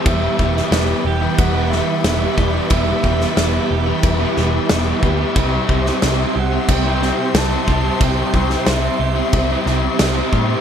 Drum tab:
CC |x---x---x---x---|x---x---x---x---|x---x---x---x---|x---x---x---x---|
SD |---oo-----o-o---|---oo-----o-o---|---oo-----o-o---|---oo-----o-o---|
BD |o-o-----o-----o-|o-o-----o-----o-|o-o-----o-----o-|o-o-----o-----o-|